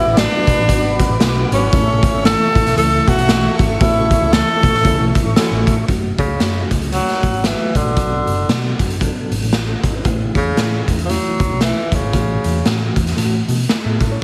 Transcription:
Already playing: E4 F#4 B4 D5 F#5 B5 D6
0.06 A1
0.16 F#3 B3 D4 F#4, snare, closed hi-hat
0.47 B1, kick, closed hi-hat
0.57 A1
0.68 G#1 F#3 B3 D4 F#4, kick, closed hi-hat
1.00 kick, closed hi-hat
1.09 A1
1.20 F#3 B3 D4 E4, snare, closed hi-hat
1.28 F#4
1.51 G#1 C#4, closed hi-hat
1.72 A1 E3 A3 C#4 E4 A4 E5 C#6, kick, closed hi-hat
2.03 kick, closed hi-hat
2.14 G#1
2.25 E3 A3 C#4 E4 A4, snare, closed hi-hat
2.55 A1, kick, closed hi-hat
2.66 B1, snare, closed hi-hat
2.76 C#2 E3 A3 C4 E4 A4, closed hi-hat
2.84 C#4
3.08 B1 F#4, kick, closed hi-hat
3.18 closed hi-hat
3.28 E3 A3 C#4 F4, snare, closed hi-hat
3.36 F#4
3.59 G#1, kick, closed hi-hat
3.80 A1 E3 A3 B3 E4 F#4, kick, closed hi-hat
3.87 C#4
4.11 kick, closed hi-hat
4.21 C#2
4.32 E3 A3 C#4 E4 A4, snare, closed hi-hat
4.63 B1, kick, closed hi-hat
4.74 A1, snare
4.84 C#2 E3 A3 C#4 E4 A4, kick, closed hi-hat
4.99 B1
5.15 kick, closed hi-hat
5.25 A1
5.36 E3 A3 C#4 E4 F#4 A4, muted picked electric bass stroke, snare, closed hi-hat
5.51 A1
5.67 A2, kick, closed hi-hat
5.88 F#1 F#3 A3 C#4 F#4, kick, closed hi-hat
6.19 C#2 C#3, kick, closed hi-hat
6.40 F#2 F#3 A3 C#4 F#4, snare, closed hi-hat
6.71 C#2, kick, closed hi-hat
6.82 closed hi-hat
6.93 F#3 G#3 C#4 F#4, closed hi-hat
6.99 A3
7.08 snare
7.23 A1, kick, closed hi-hat
7.33 G#1, closed hi-hat
7.44 E3 F#3 A3 C#4 F4, snare, closed hi-hat
7.52 F#4
7.75 A1 D3, kick, closed hi-hat
7.85 A#1
7.96 B1 F#3 B3 D4 F#4, kick, closed hi-hat
8.27 F#1, closed hi-hat
8.49 B2 F#3 B3 D4 E4, snare, closed hi-hat
8.57 F#4
8.79 F#1, kick, closed hi-hat
8.90 closed hi-hat
9.01 F#3 B3 D4 A4, kick, closed hi-hat
9.31 G#1, closed hi-hat
9.42 A1, closed hi-hat
9.53 A3 F#4, snare, closed hi-hat
9.69 C#4 A4
9.83 G#1, kick, closed hi-hat
9.96 D4 B4
10.05 A1 E3 A3 C#4 E4, kick, closed hi-hat
10.35 E2 C#3, kick, closed hi-hat
10.57 A2 E3 A3 C#4 E4, snare, closed hi-hat
10.88 E2, kick, closed hi-hat
10.99 closed hi-hat
11.05 E3 F3
11.09 F#3 A3 C#4 E4, closed hi-hat
11.40 C#2, kick, closed hi-hat
11.52 B1
11.60 E3 A3 B3 E4, snare, closed hi-hat
11.68 C#4
11.92 C#2 C#3, kick, closed hi-hat
12.04 G#1
12.13 A1 E3 A3 C4 F#4, kick, closed hi-hat
12.44 E2, closed hi-hat
12.65 A2 E3 A3 C#4 F#4, snare, closed hi-hat
12.96 E2, kick, closed hi-hat
13.07 snare, closed hi-hat
13.17 A2 E3 A3 C#4 F4, closed hi-hat
13.24 F#4
13.48 B2, closed hi-hat
13.59 closed hi-hat
13.69 snare, closed hi-hat
13.85 A2 B3 G#4
14.00 A2 C#4 A4, kick, closed hi-hat
14.12 E4 C#5

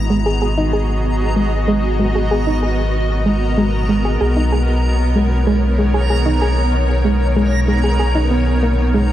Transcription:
Already playing: G#1 B3 F#4 G#4 D#5 A#5
0.10 G#3
0.26 G#4
0.42 G#4
0.57 D#4
0.73 G#4
1.36 G#3
1.68 G#3 A#4
2.00 G#3
2.15 G#4
2.31 G#4
2.47 D#4
2.63 G#4
3.26 G#3
3.57 G#3
3.89 G#3
4.05 G#4
4.21 B1 D#4 G#4 C#5
4.36 D#4
4.52 G#4
5.15 G#3
5.47 G#3
5.78 G#3
5.94 G#4
6.10 G#4
6.26 D#4
6.42 G#4
7.05 G#3
7.36 G#3
7.68 G#3
7.84 G#4
8.00 G#4
8.15 D#4
8.31 B3
8.63 A#3
8.94 G#3

